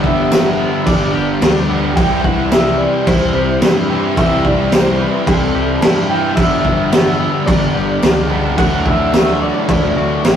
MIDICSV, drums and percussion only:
0, 0, Header, 1, 2, 480
1, 0, Start_track
1, 0, Tempo, 551978
1, 1709, Time_signature, 4, 2, 24, 8
1, 9013, End_track
2, 0, Start_track
2, 0, Title_t, "Drums"
2, 35, Note_on_c, 9, 36, 83
2, 122, Note_off_c, 9, 36, 0
2, 274, Note_on_c, 9, 54, 101
2, 275, Note_on_c, 9, 49, 62
2, 277, Note_on_c, 9, 38, 109
2, 361, Note_off_c, 9, 54, 0
2, 362, Note_off_c, 9, 49, 0
2, 363, Note_off_c, 9, 38, 0
2, 753, Note_on_c, 9, 49, 69
2, 754, Note_on_c, 9, 36, 114
2, 840, Note_off_c, 9, 36, 0
2, 840, Note_off_c, 9, 49, 0
2, 1232, Note_on_c, 9, 54, 85
2, 1236, Note_on_c, 9, 49, 70
2, 1238, Note_on_c, 9, 38, 118
2, 1319, Note_off_c, 9, 54, 0
2, 1323, Note_off_c, 9, 49, 0
2, 1324, Note_off_c, 9, 38, 0
2, 1712, Note_on_c, 9, 49, 65
2, 1713, Note_on_c, 9, 36, 119
2, 1799, Note_off_c, 9, 49, 0
2, 1800, Note_off_c, 9, 36, 0
2, 1951, Note_on_c, 9, 36, 84
2, 2038, Note_off_c, 9, 36, 0
2, 2188, Note_on_c, 9, 49, 61
2, 2189, Note_on_c, 9, 38, 106
2, 2190, Note_on_c, 9, 54, 96
2, 2275, Note_off_c, 9, 49, 0
2, 2276, Note_off_c, 9, 38, 0
2, 2277, Note_off_c, 9, 54, 0
2, 2670, Note_on_c, 9, 49, 74
2, 2671, Note_on_c, 9, 36, 122
2, 2757, Note_off_c, 9, 49, 0
2, 2758, Note_off_c, 9, 36, 0
2, 3146, Note_on_c, 9, 49, 65
2, 3148, Note_on_c, 9, 38, 117
2, 3148, Note_on_c, 9, 54, 108
2, 3233, Note_off_c, 9, 49, 0
2, 3235, Note_off_c, 9, 38, 0
2, 3235, Note_off_c, 9, 54, 0
2, 3627, Note_on_c, 9, 49, 61
2, 3629, Note_on_c, 9, 36, 115
2, 3714, Note_off_c, 9, 49, 0
2, 3716, Note_off_c, 9, 36, 0
2, 3868, Note_on_c, 9, 36, 87
2, 3955, Note_off_c, 9, 36, 0
2, 4106, Note_on_c, 9, 49, 63
2, 4108, Note_on_c, 9, 38, 117
2, 4110, Note_on_c, 9, 54, 104
2, 4193, Note_off_c, 9, 49, 0
2, 4195, Note_off_c, 9, 38, 0
2, 4197, Note_off_c, 9, 54, 0
2, 4585, Note_on_c, 9, 36, 119
2, 4585, Note_on_c, 9, 49, 65
2, 4671, Note_off_c, 9, 49, 0
2, 4672, Note_off_c, 9, 36, 0
2, 5063, Note_on_c, 9, 49, 73
2, 5063, Note_on_c, 9, 54, 93
2, 5065, Note_on_c, 9, 38, 117
2, 5150, Note_off_c, 9, 49, 0
2, 5150, Note_off_c, 9, 54, 0
2, 5152, Note_off_c, 9, 38, 0
2, 5538, Note_on_c, 9, 49, 65
2, 5540, Note_on_c, 9, 36, 108
2, 5625, Note_off_c, 9, 49, 0
2, 5627, Note_off_c, 9, 36, 0
2, 5780, Note_on_c, 9, 36, 80
2, 5867, Note_off_c, 9, 36, 0
2, 6021, Note_on_c, 9, 54, 101
2, 6022, Note_on_c, 9, 49, 68
2, 6024, Note_on_c, 9, 38, 121
2, 6108, Note_off_c, 9, 54, 0
2, 6109, Note_off_c, 9, 49, 0
2, 6111, Note_off_c, 9, 38, 0
2, 6501, Note_on_c, 9, 36, 118
2, 6503, Note_on_c, 9, 49, 72
2, 6588, Note_off_c, 9, 36, 0
2, 6590, Note_off_c, 9, 49, 0
2, 6979, Note_on_c, 9, 54, 87
2, 6983, Note_on_c, 9, 49, 67
2, 6985, Note_on_c, 9, 38, 123
2, 7066, Note_off_c, 9, 54, 0
2, 7070, Note_off_c, 9, 49, 0
2, 7072, Note_off_c, 9, 38, 0
2, 7461, Note_on_c, 9, 36, 113
2, 7461, Note_on_c, 9, 49, 65
2, 7548, Note_off_c, 9, 36, 0
2, 7548, Note_off_c, 9, 49, 0
2, 7701, Note_on_c, 9, 36, 87
2, 7788, Note_off_c, 9, 36, 0
2, 7944, Note_on_c, 9, 54, 98
2, 7945, Note_on_c, 9, 49, 54
2, 7947, Note_on_c, 9, 38, 112
2, 8031, Note_off_c, 9, 54, 0
2, 8032, Note_off_c, 9, 49, 0
2, 8034, Note_off_c, 9, 38, 0
2, 8423, Note_on_c, 9, 49, 65
2, 8425, Note_on_c, 9, 36, 116
2, 8510, Note_off_c, 9, 49, 0
2, 8511, Note_off_c, 9, 36, 0
2, 8910, Note_on_c, 9, 49, 68
2, 8911, Note_on_c, 9, 38, 115
2, 8911, Note_on_c, 9, 54, 93
2, 8997, Note_off_c, 9, 49, 0
2, 8998, Note_off_c, 9, 38, 0
2, 8998, Note_off_c, 9, 54, 0
2, 9013, End_track
0, 0, End_of_file